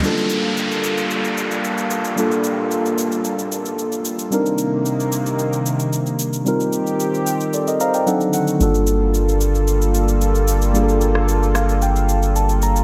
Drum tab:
SH |xxx-xxxxxxxxxxxx|xxx-xxxxxxxxxxxx|xxx-xxxxxxxxxxxx|xxxxxxxxxxxxxxxx|
SD |----------------|----------------|----------------|----------------|

SH |xxx-xxxxxxxxxxxx|xxx-xxxxxxxxxxxx|
SD |----------------|---r--r---------|